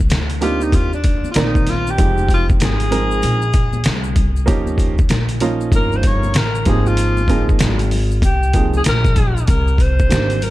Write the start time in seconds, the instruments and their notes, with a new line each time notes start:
Already playing: upright bass C2
0.00 kick
0.10 upright bass D2, snare, closed hi-hat, low conga, maracas
0.30 closed hi-hat, maracas
0.41 grand piano A#3 C4 D4 D#4 G4, alto saxophone F4, closed hi-hat, low conga, maracas
0.61 alto saxophone D#4, maracas
0.72 upright bass D#2, alto saxophone F4, kick, closed hi-hat, high conga, maracas
0.93 alto saxophone D4, maracas
1.04 kick, closed hi-hat, maracas
1.24 high conga, maracas
1.31 alto saxophone F4, closed hi-hat
1.35 upright bass A#1, grand piano D#3 A#3 C4 A#4 D5, alto saxophone D#4, snare, maracas
1.55 kick, maracas
1.67 alto saxophone F4, snare, closed hi-hat, high conga, low conga, maracas
1.87 alto saxophone G4, maracas
1.98 upright bass F1, grand piano F3 G#3 C4 D#4 G4, kick, closed hi-hat, maracas
2.18 high conga, maracas
2.29 kick, closed hi-hat, maracas
2.33 alto saxophone F4
2.49 kick, maracas
2.60 upright bass G#1, alto saxophone G#4, snare, closed hi-hat, low conga, maracas
2.80 closed hi-hat, maracas
2.91 grand piano F3 G#3 C4 D#4 A#4, closed hi-hat, low conga, maracas
3.11 maracas
3.23 upright bass A#1, closed hi-hat, high conga, maracas
3.42 maracas
3.53 kick, closed hi-hat, maracas
3.73 high conga, maracas
3.84 upright bass C2, snare, closed hi-hat, maracas
4.04 maracas
4.16 kick, closed hi-hat, high conga, low conga, maracas
4.36 maracas
4.46 upright bass D#2, grand piano F3 A#3 C#4 D#4 G4, kick, closed hi-hat, maracas
4.67 high conga, maracas
4.78 kick, closed hi-hat, maracas
4.98 kick, maracas
5.09 upright bass A#1, snare, closed hi-hat, low conga, maracas
5.29 closed hi-hat, maracas
5.40 grand piano F3 A#3 C#4 D#4 F4, closed hi-hat, low conga, maracas
5.61 maracas
5.72 upright bass G1, alto saxophone A#4, kick, closed hi-hat, high conga, maracas
5.92 alto saxophone C5, maracas
6.03 alto saxophone C#5, kick, closed hi-hat, maracas
6.23 high conga, maracas
6.34 upright bass A1, alto saxophone A#4, snare, closed hi-hat, maracas
6.55 maracas
6.65 upright bass G#1, grand piano F3 A#3 C4 D#4 G4, alto saxophone G#4, kick, snare, closed hi-hat, high conga, low conga, maracas
6.73 grand piano G#4
6.86 alto saxophone F4, maracas
6.97 closed hi-hat, maracas
7.17 high conga, maracas
7.28 grand piano F3 A#3 C4 D#4 G#4, kick, closed hi-hat, maracas
7.49 kick, maracas
7.59 upright bass G#1, snare, closed hi-hat, low conga, maracas
7.79 closed hi-hat, maracas
7.91 open hi-hat, low conga, maracas
8.11 maracas
8.22 upright bass C2, alto saxophone G4, kick, closed hi-hat, high conga, maracas
8.43 maracas
8.53 grand piano F3 A#3 C4 D#4 G#4, kick, closed hi-hat, maracas
8.74 alto saxophone G#4, high conga, maracas
8.84 upright bass A#1, snare, closed hi-hat, maracas
8.89 alto saxophone A#4
9.05 kick, snare, maracas
9.16 kick, closed hi-hat, high conga, low conga, maracas
9.37 maracas
9.47 upright bass C2, alto saxophone A#4, kick, closed hi-hat, maracas
9.68 maracas
9.78 alto saxophone C5, kick, closed hi-hat, maracas
9.99 kick, maracas
10.09 upright bass G#1, grand piano D#3 A#3 C4 D4 G4, snare, closed hi-hat, maracas
10.30 closed hi-hat, maracas
10.42 alto saxophone A#4, closed hi-hat, low conga, maracas